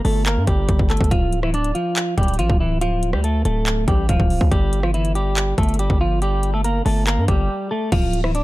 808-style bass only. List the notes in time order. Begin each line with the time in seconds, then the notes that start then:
0.05 G1
0.37 G2
0.47 G1
0.69 G1
0.79 G1
1.01 G1
1.11 D1
2.18 D1
2.39 A1
2.50 D1
3.13 D2
3.45 D1
3.88 A1
4.09 D1
4.20 D1
4.41 D2
4.52 G1
5.58 G1
5.90 G1
6.86 G1
7.18 G2
7.28 G1
7.92 D1